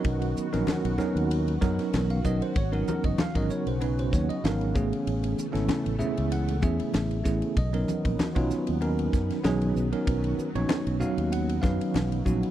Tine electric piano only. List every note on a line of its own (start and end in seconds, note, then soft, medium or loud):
0.00 0.46 F#3 medium
0.00 0.46 B3 medium
0.00 0.47 C#4 medium
0.00 0.46 D#4 medium
0.00 0.46 A#4 medium
0.00 0.65 D#5 medium
0.53 0.94 F#3 medium
0.53 0.94 B3 medium
0.53 0.94 C#4 medium
0.53 0.94 D#4 medium
0.53 0.94 A#4 loud
0.98 1.55 F#3 medium
0.98 1.55 B3 medium
0.98 1.55 C#4 medium
0.98 1.55 D#4 medium
0.98 1.55 A#4 loud
1.61 2.18 F#3 medium
1.61 2.18 B3 medium
1.61 2.18 C#4 medium
1.61 2.18 D#4 medium
1.61 2.18 A#4 loud
2.11 2.24 F5 medium
2.25 2.56 F#3 medium
2.25 2.56 B3 medium
2.25 2.56 C#4 medium
2.25 2.57 D#4 medium
2.25 2.56 A#4 medium
2.25 2.41 D#5 medium
2.42 2.56 C5 medium
2.57 2.73 C#5 medium
2.72 3.28 F#3 medium
2.72 3.28 B3 medium
2.72 3.28 C#4 medium
2.72 3.28 D#4 medium
2.72 2.87 F#4 medium
2.72 2.87 A#4 medium
2.88 3.04 A#4 medium
3.05 3.18 D#5 medium
3.20 3.36 F5 loud
3.35 3.76 F#3 medium
3.35 3.76 B3 medium
3.35 3.76 C#4 medium
3.35 3.76 D#4 medium
3.35 3.76 A#4 medium
3.35 3.50 D#5 medium
3.51 3.66 C#5 medium
3.68 3.81 C5 medium
3.81 4.37 F#3 medium
3.81 4.37 B3 medium
3.81 4.37 C#4 medium
3.81 4.38 D#4 medium
3.81 4.38 B4 medium
4.00 4.13 C5 medium
4.13 4.29 C#5 medium
4.29 4.43 D#5 medium
4.44 4.75 F#3 medium
4.44 4.74 B3 medium
4.44 4.74 C#4 medium
4.44 4.76 D#4 medium
4.44 4.76 A#4 medium
4.44 5.34 F5 medium
4.75 5.45 E3 medium
4.75 5.45 A3 medium
4.75 5.45 B3 medium
4.75 5.45 C#4 medium
4.75 5.45 G#4 medium
5.52 5.95 A3 medium
5.52 5.94 B3 medium
5.52 5.95 C#4 medium
5.52 5.95 E4 medium
5.52 5.95 A4 medium
5.99 6.56 A3 medium
5.99 6.56 B3 medium
5.99 6.56 C#4 medium
5.99 6.56 E4 medium
5.99 6.56 G#4 medium
5.99 6.30 E5 medium
6.32 6.62 F#5 medium
6.62 7.19 A3 medium
6.62 7.19 B3 medium
6.62 7.19 C#4 medium
6.62 7.19 E4 medium
6.62 7.19 G#4 medium
6.62 7.53 E5 medium
7.24 7.56 A3 medium
7.24 7.56 B3 medium
7.24 7.56 C#4 medium
7.24 7.56 E4 medium
7.24 7.56 G#4 medium
7.58 8.47 D#5 medium
7.73 8.29 F#3 medium
7.73 8.29 B3 medium
7.73 8.29 C#4 medium
7.73 8.29 D#4 medium
7.73 8.29 A#4 medium
8.35 8.77 F#3 medium
8.35 8.77 B3 medium
8.35 8.77 C#4 medium
8.35 8.77 D#4 medium
8.35 8.77 F4 loud
8.81 9.38 F#3 medium
8.81 9.38 B3 medium
8.81 9.38 C#4 medium
8.81 9.38 D#4 medium
8.81 9.38 A#4 loud
9.44 9.87 F#3 loud
9.44 9.87 B3 medium
9.44 9.87 C#4 medium
9.44 9.87 D#4 medium
9.44 9.87 G#4 loud
9.92 10.48 F#3 medium
9.92 10.48 B3 medium
9.92 10.48 C#4 medium
9.92 10.48 D#4 medium
9.92 10.48 A#4 medium
10.55 10.97 F#3 medium
10.55 10.97 B3 medium
10.55 10.96 C#4 medium
10.55 10.97 D#4 medium
10.55 10.97 C#5 loud
11.00 11.57 F#3 medium
11.00 11.57 B3 medium
11.00 11.57 C#4 medium
11.00 11.57 D#4 medium
11.00 11.57 F#4 medium
11.00 11.31 F5 medium
11.32 11.63 F#5 medium
11.62 12.19 F#3 medium
11.62 12.20 B3 medium
11.62 12.20 C#4 medium
11.62 12.19 D#4 medium
11.62 12.19 B4 medium
11.62 12.51 F5 medium
12.25 12.51 F#3 medium
12.25 12.51 B3 medium
12.25 12.51 C#4 medium
12.25 12.51 D#4 medium
12.25 12.51 F#4 medium